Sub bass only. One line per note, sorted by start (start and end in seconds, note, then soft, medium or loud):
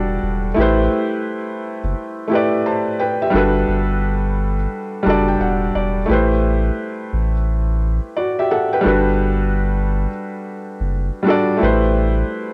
0.00 0.19 E1 medium
0.23 0.53 E1 loud
0.58 0.88 A1 loud
1.83 1.94 F#1 loud
3.34 3.64 G1 loud
3.68 4.67 G1 medium
5.06 5.36 F#1 medium
5.40 5.71 E1 medium
5.75 6.05 E1 medium
6.09 6.71 A1 loud
7.13 8.00 A1 medium
8.86 10.07 G1 loud
10.80 11.10 F#1 medium
11.62 12.23 A1 loud